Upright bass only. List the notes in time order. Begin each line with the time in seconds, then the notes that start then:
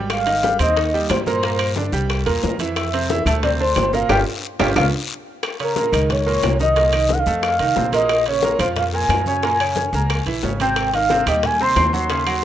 Already playing: G#1
0.59 D#2
1.10 G2
1.92 C2
2.26 E2
2.44 F2
3.26 D2
3.76 G1
4.09 G1
4.60 G1
4.76 C#2
5.92 C#2
6.43 C2
7.26 F2
7.60 C2
7.76 A#1
8.59 F2
9.09 F#2
9.93 C#2
10.26 A#1
10.43 G#1
11.26 D#2
11.76 D#2